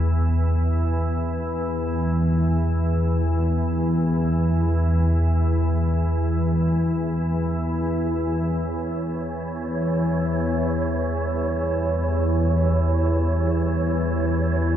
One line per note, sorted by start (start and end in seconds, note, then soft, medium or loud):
0.00 8.14 E2 medium
0.00 8.14 E3 medium
8.14 14.77 E2 medium
8.14 14.77 E3 medium
8.14 14.77 E4 medium
8.14 14.77 C#5 medium
9.24 14.77 G4 medium
12.48 14.77 C#5 medium